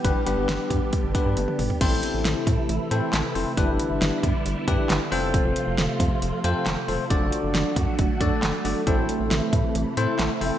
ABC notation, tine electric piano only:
X:1
M:4/4
L:1/8
Q:1/4=136
K:Am
V:1 name="Tine electric piano"
[B,DGB] [B,DGB]3 z [B,DGB]2 z | [CEAc]3 z2 [CEAc] z [CEAc] | [DEGB]3 z2 [DEGB] z [CFAc]- | [CFAc]2 z3 [CFAc] z [CFAc] |
[D^FAd]3 z2 [DFAd] z [DFAd] | [CEAc]3 z2 [CEAc] z [CEAc] |]